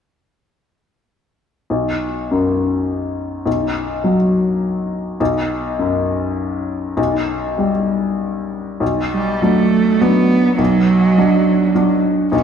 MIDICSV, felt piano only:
0, 0, Header, 1, 2, 480
1, 0, Start_track
1, 0, Key_signature, 2, "minor"
1, 0, Tempo, 609756
1, 1337, Time_signature, 3, 2, 24, 8
1, 1811, Tempo, 579710
1, 4691, Tempo, 604230
1, 8051, Tempo, 579710
1, 10058, End_track
2, 0, Start_track
2, 0, Title_t, "Felt piano"
2, 0, Program_c, 0, 0
2, 1338, Note_on_c, 0, 35, 37
2, 1470, Control_c, 0, 64, 127
2, 1820, Note_on_c, 0, 42, 31
2, 2740, Note_off_c, 0, 35, 0
2, 2767, Note_on_c, 0, 35, 42
2, 2787, Control_c, 0, 64, 0
2, 2932, Control_c, 0, 64, 127
2, 3250, Note_on_c, 0, 54, 35
2, 3355, Note_off_c, 0, 42, 0
2, 4174, Note_off_c, 0, 35, 0
2, 4207, Note_off_c, 0, 54, 0
2, 4214, Note_on_c, 0, 35, 47
2, 4226, Control_c, 0, 64, 0
2, 4342, Control_c, 0, 64, 127
2, 4699, Note_on_c, 0, 42, 39
2, 5612, Note_off_c, 0, 35, 0
2, 5636, Note_on_c, 0, 35, 47
2, 5656, Control_c, 0, 64, 0
2, 5775, Control_c, 0, 64, 127
2, 6122, Note_on_c, 0, 55, 34
2, 6220, Note_off_c, 0, 42, 0
2, 7065, Note_off_c, 0, 35, 0
2, 7093, Note_on_c, 0, 35, 42
2, 7100, Note_off_c, 0, 55, 0
2, 7114, Control_c, 0, 64, 0
2, 7240, Control_c, 0, 64, 127
2, 7560, Note_off_c, 0, 35, 0
2, 7581, Note_on_c, 0, 54, 33
2, 7583, Note_on_c, 0, 62, 32
2, 7590, Note_on_c, 0, 66, 33
2, 8021, Note_off_c, 0, 54, 0
2, 8021, Note_off_c, 0, 62, 0
2, 8025, Note_off_c, 0, 66, 0
2, 8051, Note_on_c, 0, 62, 34
2, 8052, Note_on_c, 0, 54, 35
2, 8054, Note_on_c, 0, 66, 36
2, 8499, Note_off_c, 0, 54, 0
2, 8499, Note_off_c, 0, 62, 0
2, 8500, Note_off_c, 0, 66, 0
2, 8525, Note_on_c, 0, 35, 46
2, 8548, Control_c, 0, 64, 0
2, 8694, Control_c, 0, 64, 127
2, 8997, Note_off_c, 0, 35, 0
2, 9017, Note_on_c, 0, 54, 39
2, 9021, Note_on_c, 0, 62, 40
2, 9024, Note_on_c, 0, 66, 44
2, 9460, Note_off_c, 0, 54, 0
2, 9462, Note_off_c, 0, 62, 0
2, 9463, Note_off_c, 0, 66, 0
2, 9492, Note_on_c, 0, 54, 35
2, 9495, Note_on_c, 0, 62, 39
2, 9501, Note_on_c, 0, 66, 43
2, 9938, Note_off_c, 0, 54, 0
2, 9939, Note_off_c, 0, 62, 0
2, 9942, Note_off_c, 0, 66, 0
2, 9963, Note_on_c, 0, 35, 46
2, 9985, Control_c, 0, 64, 0
2, 10058, Note_off_c, 0, 35, 0
2, 10058, End_track
0, 0, End_of_file